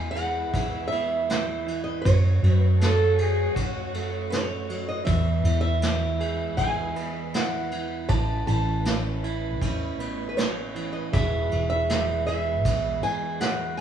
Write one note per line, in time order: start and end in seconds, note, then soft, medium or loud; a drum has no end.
0.00 0.54 E2 medium
0.00 2.05 E2 medium
0.00 1.66 E3 medium
0.00 2.03 G#3 medium
0.00 0.53 E4 medium
0.00 2.03 E4 medium
0.00 2.03 B4 medium
0.00 0.10 G#5 loud
0.11 0.87 F#5 medium
0.16 2.01 G#4 medium
0.16 ride soft
0.54 0.92 B1 medium
0.54 1.29 E4 medium
0.54 kick medium
0.54 ride medium
0.88 1.89 E2 medium
0.88 1.83 E5 medium
0.92 2.01 B3 medium
0.92 ride soft
1.29 2.02 E4 medium
1.29 snare medium
1.29 ride medium
1.67 2.01 E3 medium
1.67 ride soft
1.84 2.05 D#5 medium
2.02 2.38 F#2 medium
2.02 5.03 F#2 medium
2.02 5.04 A3 medium
2.02 5.04 F#4 medium
2.02 2.56 C#5 medium
2.02 5.04 C#5 medium
2.02 kick medium
2.06 ride medium
2.43 3.56 F#2 medium
2.43 4.69 F#3 medium
2.43 ride soft
2.56 2.75 B4 medium
2.79 3.56 C#4 medium
2.79 3.15 A4 medium
2.79 snare medium
2.79 ride medium
3.18 3.57 G#4 medium
3.18 ride soft
3.55 3.93 C#2 medium
3.55 4.31 C#4 medium
3.55 4.13 F#4 medium
3.55 kick medium
3.55 ride medium
3.93 4.91 F#2 medium
3.93 5.03 A3 medium
3.93 ride medium
4.30 5.03 C#4 medium
4.30 4.84 C#5 medium
4.30 snare medium
4.30 ride medium
4.69 5.03 F#3 medium
4.69 ride soft
4.89 5.04 D#5 medium
5.05 5.39 E2 medium
5.05 8.10 E2 medium
5.05 8.07 G#3 medium
5.05 8.07 E4 medium
5.05 13.81 B4 medium
5.05 5.59 E5 medium
5.05 kick medium
5.05 ride medium
5.44 6.58 E2 medium
5.44 7.72 E3 medium
5.44 ride soft
5.61 6.53 E5 medium
5.82 6.59 E4 medium
5.82 snare medium
5.82 ride medium
6.20 8.05 G#4 medium
6.20 ride soft
6.57 6.95 B1 medium
6.57 7.35 E4 medium
6.57 7.35 G#5 medium
6.57 kick medium
6.57 ride medium
6.95 7.93 E2 medium
6.95 8.12 B3 medium
6.95 ride soft
7.34 8.87 E4 medium
7.34 8.08 F#5 medium
7.34 snare medium
7.34 ride medium
7.71 8.47 E3 medium
7.71 ride soft
8.08 8.42 A1 medium
8.08 11.13 A2 medium
8.08 11.10 A3 medium
8.08 11.10 C#4 medium
8.08 8.46 A5 medium
8.08 kick medium
8.08 ride medium
8.47 9.61 A1 medium
8.47 10.74 E3 medium
8.47 9.95 A5 medium
8.47 ride soft
8.85 9.61 C#4 medium
8.85 snare medium
8.85 ride medium
9.24 11.14 E4 medium
9.24 ride soft
9.61 10.00 E2 medium
9.61 10.36 C#4 medium
9.61 kick medium
9.61 ride medium
9.99 10.98 A1 medium
9.99 11.09 B3 medium
9.99 ride soft
10.29 10.37 B4 medium
10.37 11.09 C#4 medium
10.37 10.90 C#5 medium
10.37 snare medium
10.37 ride medium
10.75 11.09 E3 medium
10.75 ride soft
10.93 11.13 D#5 medium
11.12 11.46 E1 medium
11.12 13.78 E2 medium
11.12 11.48 E3 medium
11.12 13.03 G#3 medium
11.12 13.81 G#3 medium
11.12 11.87 B3 soft
11.12 13.81 E4 medium
11.12 12.27 G#4 medium
11.12 11.66 E5 medium
11.12 kick medium
11.12 ride medium
11.49 12.65 E1 medium
11.49 13.81 E3 medium
11.49 ride soft
11.70 12.25 E5 medium
11.88 12.65 B3 medium
11.88 snare medium
11.88 ride medium
12.27 13.81 G#4 medium
12.27 13.03 E5 medium
12.27 ride soft
12.65 13.05 B1 loud
12.65 13.81 B3 medium
12.65 kick medium
12.65 ride medium
13.03 13.81 E1 medium
13.03 13.81 G#3 medium
13.03 13.40 G#5 loud
13.03 ride soft
13.40 13.76 F#5 medium
13.40 snare medium
13.40 ride medium
13.77 13.81 G#5 medium